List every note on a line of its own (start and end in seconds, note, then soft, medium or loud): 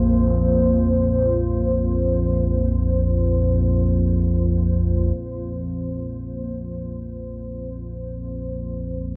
0.00 5.16 A#1 medium
0.00 5.16 F2 medium
0.00 9.16 A#3 medium
0.00 9.16 F4 medium
0.00 9.16 C5 medium
0.00 5.20 F5 medium
5.17 9.16 A#1 medium
5.17 9.16 F2 medium